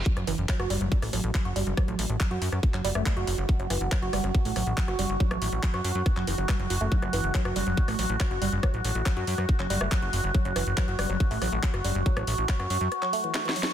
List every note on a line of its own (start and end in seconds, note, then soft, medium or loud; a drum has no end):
0.06 0.10 F#3 medium
0.06 13.73 F#4 medium
0.06 kick loud
0.06 closed hi-hat medium
0.17 0.24 F#1 medium
0.17 0.23 F#3 medium
0.17 cross-stick soft
0.17 closed hi-hat soft
0.27 0.35 F#1 loud
0.27 0.31 E3 loud
0.27 open hi-hat loud
0.38 0.46 F#1 medium
0.38 closed hi-hat soft
0.49 0.53 F#3 loud
0.49 kick loud
0.49 clap loud
0.49 closed hi-hat medium
0.59 0.67 F#1 medium
0.59 0.65 F#4 loud
0.59 cross-stick medium
0.59 closed hi-hat soft
0.70 0.78 F#1 loud
0.70 0.76 G3 loud
0.70 open hi-hat loud
0.81 0.88 F#1 medium
0.81 0.85 F#3 medium
0.81 closed hi-hat soft
0.92 kick loud
0.92 closed hi-hat medium
1.02 1.10 A1 medium
1.02 1.06 A3 medium
1.02 cross-stick soft
1.02 open hi-hat medium
1.13 1.21 A1 loud
1.13 1.15 F#3 medium
1.13 open hi-hat loud
1.24 1.31 A1 medium
1.24 closed hi-hat soft
1.34 1.38 F#3 medium
1.34 kick loud
1.34 cross-stick soft
1.34 clap loud
1.34 closed hi-hat medium
1.45 1.53 F#1 medium
1.45 1.51 F#4 loud
1.45 closed hi-hat soft
1.56 1.63 F#1 loud
1.56 1.62 G3 loud
1.56 open hi-hat loud
1.67 1.74 F#1 medium
1.67 closed hi-hat soft
1.77 1.80 F#3 loud
1.77 kick loud
1.77 cross-stick medium
1.77 closed hi-hat medium
1.88 1.96 A1 medium
1.88 1.92 F#3 medium
1.88 closed hi-hat soft
1.99 2.06 A1 loud
1.99 open hi-hat loud
2.10 2.17 A1 medium
2.10 closed hi-hat soft
2.20 2.24 F#3 medium
2.20 kick loud
2.20 cross-stick soft
2.20 clap loud
2.20 closed hi-hat medium
2.31 2.38 F#2 medium
2.31 2.37 F#4 loud
2.31 closed hi-hat soft
2.42 2.49 F#2 loud
2.42 2.44 F#4 medium
2.42 open hi-hat loud
2.52 2.60 F#2 medium
2.52 cross-stick soft
2.52 closed hi-hat soft
2.63 kick loud
2.63 closed hi-hat medium
2.74 2.81 F#1 medium
2.74 2.78 F#3 medium
2.74 clap soft
2.74 closed hi-hat soft
2.85 2.92 F#1 loud
2.85 2.88 G3 loud
2.85 open hi-hat loud
2.95 3.03 F#1 medium
2.95 2.99 A3 loud
2.95 cross-stick medium
3.06 3.10 F#3 medium
3.06 kick loud
3.06 clap loud
3.06 closed hi-hat medium
3.17 3.24 F#1 medium
3.17 3.23 F#4 loud
3.17 closed hi-hat soft
3.27 3.35 F#1 loud
3.27 3.30 F#4 medium
3.27 open hi-hat loud
3.38 3.46 F#1 loud
3.38 closed hi-hat soft
3.49 3.53 F#3 medium
3.49 kick loud
3.49 closed hi-hat medium
3.60 3.67 F#1 medium
3.60 3.65 F#3 medium
3.60 closed hi-hat soft
3.70 3.78 F#1 loud
3.70 3.74 E3 loud
3.70 cross-stick soft
3.70 open hi-hat loud
3.81 3.88 F#1 medium
3.92 3.96 F#3 loud
3.92 kick loud
3.92 clap loud
4.02 4.10 F#1 medium
4.02 4.08 F#4 loud
4.02 closed hi-hat soft
4.13 4.21 F#1 loud
4.13 4.19 G3 loud
4.13 cross-stick medium
4.13 open hi-hat loud
4.24 4.31 F#1 medium
4.24 4.28 F#3 medium
4.24 closed hi-hat soft
4.35 kick loud
4.35 closed hi-hat medium
4.45 4.53 A1 medium
4.45 4.49 A3 medium
4.45 open hi-hat medium
4.56 4.63 A1 loud
4.56 4.58 F#3 medium
4.56 cross-stick soft
4.56 open hi-hat loud
4.67 4.74 A1 medium
4.67 closed hi-hat soft
4.77 4.81 F#3 medium
4.77 kick loud
4.77 clap loud
4.77 closed hi-hat medium
4.88 4.96 F#1 medium
4.88 4.94 F#4 loud
4.88 cross-stick soft
4.88 closed hi-hat soft
4.99 5.06 F#1 loud
4.99 5.05 G3 loud
4.99 open hi-hat loud
5.10 5.17 F#1 medium
5.10 closed hi-hat soft
5.20 5.23 F#3 loud
5.20 kick loud
5.20 closed hi-hat medium
5.31 5.38 A1 medium
5.31 5.35 F#3 medium
5.31 cross-stick medium
5.31 closed hi-hat soft
5.42 5.49 A1 loud
5.42 open hi-hat loud
5.52 5.60 A1 medium
5.52 closed hi-hat soft
5.63 5.67 F#3 medium
5.63 kick loud
5.63 clap loud
5.63 closed hi-hat medium
5.74 5.81 F#2 medium
5.74 5.80 F#4 loud
5.74 cross-stick soft
5.74 closed hi-hat soft
5.84 5.92 F#2 loud
5.84 5.87 F#4 medium
5.84 open hi-hat loud
5.95 6.03 F#2 medium
5.95 closed hi-hat soft
6.06 kick loud
6.06 cross-stick soft
6.06 closed hi-hat medium
6.17 6.24 F#1 medium
6.17 6.21 F#3 medium
6.17 clap soft
6.17 closed hi-hat soft
6.27 6.35 F#1 loud
6.27 6.31 E3 medium
6.27 open hi-hat loud
6.38 6.46 F#1 medium
6.38 6.44 F#3 medium
6.38 closed hi-hat soft
6.49 6.55 G3 medium
6.49 kick loud
6.49 cross-stick medium
6.49 clap loud
6.49 closed hi-hat medium
6.59 6.67 F#1 medium
6.59 6.62 F#3 medium
6.59 closed hi-hat soft
6.70 6.78 F#1 loud
6.70 6.74 F#4 medium
6.70 open hi-hat loud
6.81 6.88 F#1 medium
6.81 6.83 A3 loud
6.81 closed hi-hat soft
6.92 6.96 F#3 medium
6.92 kick loud
6.92 closed hi-hat medium
7.02 7.10 F#1 medium
7.02 7.08 F#3 medium
7.02 cross-stick soft
7.02 closed hi-hat soft
7.13 7.21 F#1 loud
7.13 7.17 E3 loud
7.13 open hi-hat loud
7.24 7.31 F#1 medium
7.24 closed hi-hat soft
7.34 7.38 F#3 loud
7.34 kick loud
7.34 clap loud
7.34 closed hi-hat medium
7.45 7.53 F#1 medium
7.45 7.51 F#4 loud
7.45 cross-stick medium
7.45 closed hi-hat soft
7.56 7.63 F#1 loud
7.56 7.62 G3 loud
7.56 open hi-hat loud
7.67 7.74 F#1 medium
7.67 7.71 F#3 medium
7.67 closed hi-hat soft
7.77 kick loud
7.77 closed hi-hat medium
7.88 7.96 A1 medium
7.88 7.92 A3 medium
7.88 cross-stick soft
7.88 open hi-hat medium
7.99 8.06 A1 loud
7.99 8.01 F#3 medium
7.99 open hi-hat loud
8.10 8.17 A1 medium
8.10 closed hi-hat soft
8.20 8.24 F#3 medium
8.20 kick loud
8.20 cross-stick soft
8.20 clap loud
8.20 closed hi-hat medium
8.31 8.38 F#1 medium
8.31 8.37 F#4 loud
8.31 closed hi-hat soft
8.42 8.49 F#1 loud
8.42 8.48 G3 loud
8.42 open hi-hat loud
8.52 8.60 F#1 medium
8.63 8.65 F#3 loud
8.63 kick loud
8.63 cross-stick medium
8.63 closed hi-hat medium
8.74 8.81 A1 medium
8.74 8.78 F#3 medium
8.74 closed hi-hat soft
8.85 8.92 A1 loud
8.85 open hi-hat loud
8.95 9.03 A1 medium
8.95 closed hi-hat soft
9.06 9.10 F#3 medium
9.06 kick loud
9.06 cross-stick soft
9.06 clap loud
9.06 closed hi-hat medium
9.17 9.24 F#2 medium
9.17 9.23 F#4 loud
9.17 closed hi-hat soft
9.27 9.35 F#2 loud
9.27 9.30 F#4 medium
9.27 open hi-hat loud
9.38 9.46 F#2 medium
9.38 cross-stick soft
9.38 closed hi-hat soft
9.49 kick loud
9.49 closed hi-hat medium
9.60 9.67 F#1 medium
9.60 9.63 F#3 medium
9.60 clap soft
9.60 closed hi-hat soft
9.70 9.78 F#1 loud
9.70 9.74 G3 loud
9.70 open hi-hat loud
9.81 9.88 F#1 medium
9.81 9.85 A3 loud
9.81 cross-stick medium
9.92 9.96 F#3 medium
9.92 kick loud
9.92 clap loud
9.92 closed hi-hat medium
10.02 10.10 F#1 medium
10.02 10.08 F#4 loud
10.02 closed hi-hat soft
10.13 10.21 F#1 loud
10.13 10.15 F#4 medium
10.13 open hi-hat loud
10.24 10.31 F#1 medium
10.24 closed hi-hat soft
10.34 10.38 F#3 medium
10.34 kick loud
10.34 closed hi-hat medium
10.45 10.53 F#1 medium
10.45 10.51 F#3 medium
10.45 closed hi-hat soft
10.56 10.63 F#1 loud
10.56 10.60 E3 loud
10.56 cross-stick soft
10.56 open hi-hat loud
10.67 10.74 F#1 medium
10.67 closed hi-hat soft
10.77 10.81 F#3 loud
10.77 kick loud
10.77 clap loud
10.77 closed hi-hat medium
10.88 10.96 F#1 medium
10.88 10.94 F#4 loud
10.88 closed hi-hat soft
10.99 11.06 F#1 loud
10.99 11.05 G3 loud
10.99 cross-stick medium
10.99 open hi-hat loud
11.10 11.17 F#1 medium
11.10 11.13 F#3 medium
11.10 closed hi-hat soft
11.20 kick loud
11.20 closed hi-hat medium
11.31 11.38 A1 medium
11.31 11.35 A3 medium
11.31 open hi-hat medium
11.42 11.49 A1 loud
11.42 11.44 F#3 medium
11.42 cross-stick soft
11.42 open hi-hat loud
11.52 11.60 A1 medium
11.52 closed hi-hat soft
11.63 11.67 F#3 medium
11.63 kick loud
11.63 clap loud
11.63 closed hi-hat medium
11.74 11.81 F#1 medium
11.74 11.80 F#4 loud
11.74 cross-stick soft
11.74 closed hi-hat soft
11.85 11.92 F#1 loud
11.85 11.90 G3 loud
11.85 open hi-hat loud
11.95 12.03 F#1 medium
11.95 closed hi-hat soft
12.06 12.08 F#3 loud
12.06 kick loud
12.06 closed hi-hat medium
12.17 12.24 A1 medium
12.17 12.21 F#3 medium
12.17 cross-stick medium
12.17 closed hi-hat soft
12.27 12.35 A1 loud
12.27 open hi-hat loud
12.38 12.46 A1 medium
12.49 12.53 F#3 medium
12.49 kick loud
12.49 clap loud
12.49 closed hi-hat medium
12.60 12.67 F#2 medium
12.60 12.65 F#4 loud
12.60 cross-stick soft
12.60 closed hi-hat soft
12.70 12.78 F#2 loud
12.70 12.73 F#4 medium
12.70 open hi-hat loud
12.81 12.88 F#2 medium
12.81 closed hi-hat soft
12.92 cross-stick soft
12.92 closed hi-hat medium
13.02 13.06 F#3 medium
13.02 clap soft
13.02 closed hi-hat soft
13.13 13.15 A3 loud
13.13 open hi-hat loud
13.24 13.28 E3 medium
13.24 closed hi-hat soft
13.35 13.37 A3 medium
13.35 snare medium
13.35 clap loud
13.35 closed hi-hat medium
13.45 13.49 E3 medium
13.45 snare medium
13.45 closed hi-hat soft
13.56 13.60 F#3 medium
13.56 open hi-hat loud
13.63 snare loud